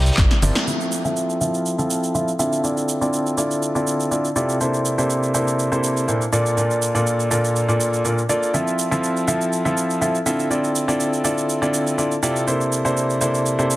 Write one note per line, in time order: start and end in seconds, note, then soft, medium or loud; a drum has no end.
0.00 0.11 C2 medium
0.00 0.15 C3 medium
0.00 0.15 C4 medium
0.00 0.15 E4 medium
0.00 0.15 G4 medium
0.00 0.15 A#4 medium
0.00 0.15 D5 medium
0.00 snare loud
0.06 snare medium
0.06 closed hi-hat soft
0.06 closed hi-hat medium
0.06 shaker soft
0.12 snare medium
0.12 closed hi-hat medium
0.17 0.27 G1 medium
0.17 0.33 C3 medium
0.17 0.33 C4 medium
0.17 0.33 E4 medium
0.17 kick loud
0.17 snare loud
0.17 snare medium
0.17 clap loud
0.17 closed hi-hat medium
0.17 shaker soft
0.31 snare medium
0.31 closed hi-hat soft
0.31 shaker soft
0.42 0.52 G1 medium
0.42 0.64 F3 loud
0.42 0.64 C4 medium
0.42 0.64 E4 medium
0.42 0.64 G4 medium
0.42 0.64 A#4 medium
0.42 0.64 D5 loud
0.42 closed hi-hat medium
0.42 open hi-hat loud
0.42 shaker medium
0.55 snare medium
0.55 closed hi-hat soft
0.55 shaker soft
0.67 1.01 F3 medium
0.67 1.01 C4 medium
0.67 1.01 E4 medium
0.67 1.01 F4 medium
0.67 1.02 A4 medium
0.67 1.01 E5 medium
0.67 shaker soft
0.81 shaker soft
0.92 shaker medium
1.05 1.38 F3 medium
1.05 1.38 C4 medium
1.05 1.38 E4 medium
1.05 1.38 F4 medium
1.05 1.38 A4 medium
1.05 1.38 E5 medium
1.05 shaker soft
1.17 shaker soft
1.30 shaker soft
1.41 1.75 F3 medium
1.41 1.75 C4 medium
1.41 1.75 E4 medium
1.41 1.75 F4 medium
1.41 1.75 A4 medium
1.41 1.75 E5 medium
1.41 shaker medium
1.54 shaker soft
1.66 shaker soft
1.78 2.12 F3 medium
1.78 2.12 C4 medium
1.78 2.12 E4 medium
1.78 2.12 F4 medium
1.78 2.12 A4 medium
1.78 2.12 E5 medium
1.78 shaker soft
1.91 shaker medium
2.04 shaker soft
2.15 2.29 F3 medium
2.15 2.29 C4 medium
2.15 2.29 E4 medium
2.15 2.29 F4 medium
2.15 2.29 A4 medium
2.15 2.29 E5 medium
2.15 shaker soft
2.28 shaker soft
2.39 2.60 D3 medium
2.39 2.60 C4 medium
2.39 2.60 E4 medium
2.39 2.60 F4 medium
2.39 2.60 A4 medium
2.39 2.60 E5 loud
2.39 shaker medium
2.53 shaker soft
2.64 2.98 D3 medium
2.64 2.98 C4 medium
2.64 2.98 E4 medium
2.64 2.98 F4 medium
2.64 2.98 A4 medium
2.64 2.98 D5 medium
2.64 shaker soft
2.77 shaker soft
2.89 shaker medium
3.01 3.35 D3 medium
3.01 3.35 C4 medium
3.01 3.35 E4 medium
3.01 3.35 F4 medium
3.01 3.35 A4 medium
3.01 3.35 D5 medium
3.01 shaker soft
3.13 shaker soft
3.27 shaker soft
3.37 3.72 D3 medium
3.37 3.72 C4 medium
3.37 3.72 E4 medium
3.37 3.72 F4 medium
3.37 3.72 A4 medium
3.37 3.72 D5 medium
3.37 shaker medium
3.51 shaker soft
3.63 shaker soft
3.75 4.09 D3 medium
3.75 4.09 C4 medium
3.75 4.09 E4 medium
3.75 4.09 F4 medium
3.75 4.09 A4 medium
3.75 4.09 D5 medium
3.75 shaker soft
3.87 shaker medium
4.00 shaker soft
4.11 4.26 D3 medium
4.11 4.26 C4 medium
4.11 4.26 E4 medium
4.11 4.26 F4 medium
4.11 4.26 A4 medium
4.11 4.26 D5 medium
4.11 shaker soft
4.25 shaker soft
4.36 4.57 C3 medium
4.36 4.57 C4 medium
4.36 4.57 E4 medium
4.36 4.57 F4 medium
4.36 4.57 A4 medium
4.36 4.57 D5 medium
4.36 shaker medium
4.49 shaker soft
4.60 4.95 C3 medium
4.60 4.95 A#3 medium
4.60 4.95 D4 medium
4.60 4.95 E4 medium
4.60 4.95 A4 medium
4.60 4.95 C5 medium
4.60 shaker soft
4.74 shaker soft
4.86 shaker medium
4.98 5.31 C3 medium
4.98 5.31 A#3 medium
4.98 5.31 D4 medium
4.98 5.31 E4 medium
4.98 5.31 A4 medium
4.98 5.31 C5 medium
4.98 shaker soft
5.10 shaker soft
5.23 shaker soft
5.34 5.69 C3 medium
5.34 5.69 A#3 medium
5.34 5.69 D4 medium
5.34 5.69 E4 medium
5.34 5.69 A4 medium
5.34 5.69 C5 medium
5.34 shaker medium
5.48 shaker soft
5.59 shaker soft
5.72 6.05 C3 medium
5.72 6.05 A#3 medium
5.72 6.05 D4 medium
5.72 6.05 E4 medium
5.72 6.05 A4 medium
5.72 6.05 C5 medium
5.72 shaker soft
5.84 shaker medium
5.97 shaker soft
6.08 6.23 A#2 medium
6.08 6.23 A#3 medium
6.08 6.23 D4 medium
6.08 6.23 E4 medium
6.08 6.23 A4 medium
6.08 6.23 C5 medium
6.08 shaker soft
6.22 shaker soft
6.32 6.54 A#2 medium
6.32 6.54 A#3 medium
6.32 6.54 D4 medium
6.32 6.54 F4 medium
6.32 6.54 A4 medium
6.32 6.54 D5 loud
6.32 shaker medium
6.46 shaker soft
6.57 6.92 A#2 medium
6.57 6.92 A#3 medium
6.57 6.92 D4 medium
6.57 6.92 F4 medium
6.57 6.92 A4 medium
6.57 6.92 D5 medium
6.57 shaker soft
6.71 shaker soft
6.82 shaker medium
6.95 7.28 A#2 medium
6.95 7.28 A#3 medium
6.95 7.28 D4 medium
6.95 7.28 F4 medium
6.95 7.28 A4 medium
6.95 7.28 D5 loud
6.95 shaker soft
7.07 shaker soft
7.20 shaker soft
7.31 7.65 A#2 medium
7.31 7.65 A#3 medium
7.31 7.65 D4 medium
7.31 7.65 F4 medium
7.31 7.65 A4 medium
7.31 7.65 D5 medium
7.31 shaker medium
7.45 shaker soft
7.56 shaker soft
7.68 8.02 A#2 medium
7.68 8.02 A#3 medium
7.68 8.02 D4 medium
7.68 8.02 F4 medium
7.68 8.02 A4 medium
7.68 8.02 D5 medium
7.68 shaker soft
7.81 shaker medium
7.94 shaker soft
8.05 8.19 A#2 medium
8.05 8.19 A#3 medium
8.05 8.19 D4 medium
8.05 8.19 F4 medium
8.05 8.19 A4 medium
8.05 8.19 D5 medium
8.05 shaker soft
8.18 shaker soft
8.29 8.50 A#3 medium
8.29 8.50 D4 medium
8.29 8.50 F4 medium
8.29 8.50 A4 medium
8.29 8.50 D5 medium
8.29 shaker medium
8.43 shaker soft
8.54 8.88 F3 medium
8.54 8.88 C4 medium
8.54 8.88 E4 medium
8.54 8.88 F4 medium
8.54 8.88 A4 medium
8.54 8.88 E5 medium
8.54 shaker soft
8.67 shaker soft
8.79 shaker medium
8.91 9.25 F3 medium
8.91 9.25 C4 medium
8.91 9.25 E4 medium
8.91 9.25 F4 medium
8.91 9.25 A4 medium
8.91 9.25 E5 medium
8.91 shaker soft
9.04 shaker soft
9.17 shaker soft
9.28 9.62 F3 medium
9.28 9.62 C4 medium
9.28 9.62 E4 medium
9.28 9.62 F4 medium
9.28 9.62 A4 medium
9.28 9.62 E5 medium
9.28 shaker medium
9.41 shaker soft
9.53 shaker soft
9.65 9.99 F3 medium
9.65 9.99 C4 medium
9.65 9.99 E4 medium
9.65 9.99 F4 medium
9.65 9.99 A4 medium
9.65 9.99 E5 medium
9.65 shaker soft
9.77 shaker medium
9.90 shaker soft
10.01 10.16 F3 medium
10.01 10.16 C4 medium
10.01 10.16 E4 medium
10.01 10.16 F4 medium
10.01 10.16 A4 medium
10.01 10.16 E5 medium
10.01 shaker soft
10.15 shaker soft
10.26 10.47 D3 medium
10.26 10.47 C4 medium
10.26 10.47 E4 medium
10.26 10.47 F4 medium
10.26 10.47 A4 medium
10.26 10.47 E5 loud
10.26 shaker medium
10.40 shaker soft
10.50 10.85 D3 medium
10.50 10.85 C4 medium
10.50 10.85 E4 medium
10.50 10.85 F4 medium
10.50 10.85 A4 medium
10.50 10.85 D5 medium
10.50 shaker soft
10.64 shaker soft
10.76 shaker medium
10.88 11.22 D3 medium
10.88 11.22 C4 medium
10.88 11.22 E4 medium
10.88 11.22 F4 medium
10.88 11.22 A4 medium
10.88 11.22 D5 medium
10.88 shaker soft
11.00 shaker soft
11.13 shaker soft
11.24 11.59 D3 medium
11.24 11.59 C4 medium
11.24 11.59 E4 medium
11.24 11.59 F4 medium
11.24 11.59 A4 medium
11.24 11.59 D5 medium
11.24 shaker medium
11.38 shaker soft
11.50 shaker soft
11.62 11.95 D3 medium
11.62 11.95 C4 medium
11.62 11.95 E4 medium
11.62 11.95 F4 medium
11.62 11.95 A4 medium
11.62 11.95 D5 medium
11.62 shaker soft
11.74 shaker medium
11.87 shaker soft
11.98 12.13 D3 medium
11.98 12.13 C4 medium
11.98 12.13 E4 medium
11.98 12.13 F4 medium
11.98 12.13 A4 medium
11.98 12.13 D5 medium
11.98 shaker soft
12.12 shaker soft
12.23 12.44 C3 medium
12.23 12.44 C4 medium
12.23 12.44 E4 medium
12.23 12.44 F4 medium
12.23 12.44 A4 medium
12.23 12.44 D5 medium
12.23 shaker medium
12.36 shaker soft
12.47 12.82 C3 medium
12.47 12.82 A#3 medium
12.47 12.82 D4 medium
12.47 12.82 E4 medium
12.47 12.82 A4 medium
12.47 12.82 C5 medium
12.47 shaker soft
12.61 shaker soft
12.72 shaker medium
12.85 13.18 C3 medium
12.85 13.18 A#3 medium
12.85 13.18 D4 medium
12.85 13.18 E4 medium
12.85 13.18 A4 medium
12.85 13.18 C5 medium
12.85 shaker soft
12.97 shaker soft
13.10 shaker soft
13.21 13.56 C3 medium
13.21 13.56 A#3 medium
13.21 13.56 D4 medium
13.21 13.56 E4 medium
13.21 13.56 A4 medium
13.21 13.56 C5 medium
13.21 shaker medium
13.35 shaker soft
13.46 shaker soft
13.59 13.76 C3 medium
13.59 13.76 A#3 medium
13.59 13.76 D4 medium
13.59 13.76 E4 medium
13.59 13.76 A4 medium
13.59 13.76 C5 medium
13.59 shaker soft
13.71 shaker medium